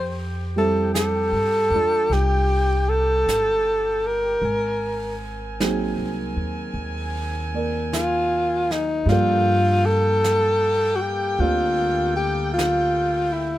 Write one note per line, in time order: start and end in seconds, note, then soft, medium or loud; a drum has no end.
0.00 1.29 F2 medium
0.00 4.41 G4 soft
0.00 0.20 C5 medium
0.00 4.40 G5 medium
0.56 4.45 G3 soft
0.56 4.45 C4 soft
0.56 4.45 E4 soft
0.56 4.45 G4 soft
0.56 0.93 A4 medium
0.94 2.14 A4 medium
0.94 brush sweep soft
0.94 snare soft
0.94 hi-hat pedal medium
1.32 1.69 G2 medium
1.70 2.07 E2 soft
1.70 4.45 D4 soft
1.75 4.45 F4 soft
2.10 3.23 C2 medium
2.10 2.90 G4 medium
2.10 brush sweep soft
2.10 snare soft
2.89 4.08 A4 medium
3.26 4.39 G1 medium
3.26 brush sweep soft
3.26 snare soft
3.26 hi-hat pedal soft
4.07 5.22 A#4 medium
4.42 5.93 G#1 medium
4.42 8.93 C4 medium
4.42 8.93 A#4 medium
4.42 8.93 G#5 medium
4.42 brush sweep soft
5.60 9.08 F#3 soft
5.60 7.52 A#3 soft
5.60 9.08 C4 soft
5.60 9.08 D#4 soft
5.60 9.08 G#4 soft
5.60 brush sweep soft
5.60 snare soft
5.60 hi-hat pedal soft
5.97 6.34 C2 soft
6.36 6.73 D#2 medium
6.74 9.02 D#2 medium
6.74 brush sweep soft
7.53 9.06 A#3 soft
7.53 9.10 A#4 soft
7.53 9.09 D5 soft
7.93 8.73 F4 medium
7.93 brush sweep soft
7.93 snare soft
7.93 hi-hat pedal soft
8.71 9.10 D#4 medium
8.71 snare soft
9.06 11.35 G2 medium
9.06 13.58 G3 soft
9.06 11.37 A#3 soft
9.06 11.39 D4 soft
9.06 9.87 F4 medium
9.06 brush sweep soft
9.06 snare soft
9.10 13.58 F3 soft
9.10 13.58 A#3 medium
9.10 13.58 A4 medium
9.10 13.58 A4 soft
9.10 13.58 G5 medium
9.85 10.97 A4 medium
10.24 brush sweep soft
10.24 snare soft
10.24 hi-hat pedal soft
10.96 11.02 F#4 medium
11.01 11.42 G4 medium
11.38 13.58 D2 medium
11.38 13.58 A#3 soft
11.38 13.58 C4 soft
11.38 13.58 D4 soft
11.38 12.16 F4 medium
11.38 13.58 G4 soft
11.38 brush sweep soft
12.16 12.53 G4 medium
12.53 13.34 F4 medium
12.58 brush sweep soft
12.58 snare soft
12.58 hi-hat pedal medium
13.32 13.58 E4 medium